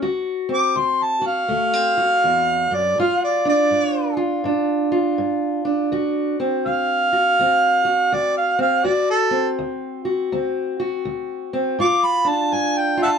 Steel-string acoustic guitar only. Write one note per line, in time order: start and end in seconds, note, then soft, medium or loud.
0.02 0.70 D2 medium
0.02 1.20 F#4 medium
0.49 1.48 C4 medium
0.76 1.44 D2 medium
1.21 1.95 F#4 medium
1.48 2.18 D2 medium
1.48 1.73 A3 medium
1.73 2.97 C4 medium
1.98 2.95 F#4 medium
2.24 2.70 E2 medium
2.71 2.98 F#2 medium
2.98 3.66 G2 medium
2.98 4.16 F4 medium
3.45 4.45 D4 medium
3.71 4.39 G2 medium
4.17 4.90 F4 medium
4.44 5.12 G2 medium
4.44 5.64 D4 medium
4.92 5.89 F4 medium
5.18 5.86 G2 medium
5.65 6.39 D4 medium
5.92 6.60 D2 medium
5.92 7.12 F#4 medium
6.40 7.40 C4 medium
6.66 7.33 D2 medium
7.13 7.84 F#4 medium
7.39 8.07 D2 medium
7.39 8.57 C4 medium
7.85 8.82 F#4 medium
8.12 8.80 D2 medium
8.59 8.83 C4 medium
8.84 9.53 D2 medium
8.84 10.04 F#4 medium
9.31 10.32 C4 medium
9.59 10.27 D2 medium
10.05 10.78 F#4 medium
10.32 11.00 D2 medium
10.32 11.52 C4 medium
10.80 11.77 F#4 medium
11.05 11.74 D2 medium
11.53 11.77 C4 medium
11.79 12.47 G2 medium
11.79 12.96 F4 medium
12.25 13.18 D4 medium
12.52 13.18 G2 medium
12.97 13.18 F4 medium